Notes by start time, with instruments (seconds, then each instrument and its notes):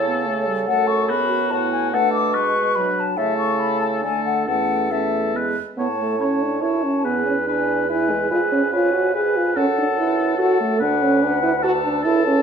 Already playing: bassoon C#3, clarinet E4, oboe A4, flute C#5
0.06 french horn B3
0.27 french horn A3, clarinet A4
0.47 french horn G3
0.67 bassoon F#2, french horn A3, oboe A4, flute F#5
0.87 flute C#6
1.09 french horn B3, oboe F#4, clarinet G#4, flute B5
1.30 clarinet F#4
1.51 bassoon A2, clarinet E4, oboe F#4, flute A5
1.72 flute G#5
1.92 bassoon B2, french horn A3, clarinet D4, oboe A4, flute F#5
2.13 flute D6
2.33 french horn G#3, oboe B4, flute C#6
2.75 french horn F#3, clarinet D4, oboe B4, flute B5
2.96 flute A5 B5
3.17 bassoon C#3, french horn A3, clarinet E4, oboe A4, flute E5
3.38 flute C#6
3.60 flute B5
3.81 flute A5
4.02 bassoon D3, french horn A3, clarinet D4, oboe A4, flute G#5
4.25 flute F#5
4.46 bassoon E2, french horn A3, clarinet C#4, oboe A4, flute F#5
4.90 french horn A3, clarinet C#4, oboe A4, flute E5
5.33 french horn G#3, clarinet B3, oboe B4
5.77 bassoon A2, french horn B3, oboe C#5, flute A5
5.99 french horn A3
6.20 french horn C#4, clarinet A4, oboe C#5, flute B5
6.24 flute A5
6.42 french horn D4
6.62 bassoon F#2, french horn E4, clarinet C#5, oboe C#5, flute A5
6.83 french horn C#4
7.04 bassoon E2, french horn B3, clarinet G#4, oboe B4, flute G#5
7.26 french horn C#4
7.46 french horn D4, clarinet B4, oboe B4, flute B5
7.52 flute G#5
7.88 french horn E4, oboe B4, flute G#5
8.11 french horn G#3
8.30 bassoon F2, french horn F4, clarinet G#4, oboe B4, flute G#5
8.52 french horn C#4
8.72 french horn F4, oboe B4, clarinet C#5, flute G#5
8.93 french horn F#4
9.14 french horn G#4, oboe B4, clarinet B4, flute G#5
9.36 french horn F4
9.55 bassoon F#2, french horn C#4, clarinet A4, oboe A4, flute F#5
9.78 french horn D4
9.99 french horn E4, clarinet B4
10.38 french horn F#4, oboe A4, clarinet A4, flute F#5
10.60 french horn A3
10.80 bassoon D2, french horn D4, oboe B4, flute F#5
11.02 french horn C#4
11.22 french horn D4, clarinet B4, flute G#5
11.27 flute F#5
11.43 french horn E4
11.63 french horn F#4, oboe A4, flute A5
11.84 french horn D4
12.04 bassoon C#2, french horn E4, oboe A4, clarinet A4, flute A5
12.27 french horn C#4